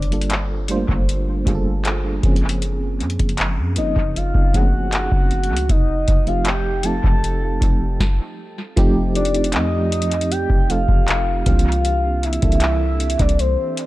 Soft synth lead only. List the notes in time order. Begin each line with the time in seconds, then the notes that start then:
Already playing: D5
3.78 D#5
4.17 F5
4.56 F#5
5.70 D#5
6.28 F5
6.47 G5
6.85 A5
9.16 D5
9.55 D#5
10.31 G5
10.70 F5
11.47 F5
12.24 E5
13.20 D5
13.40 C5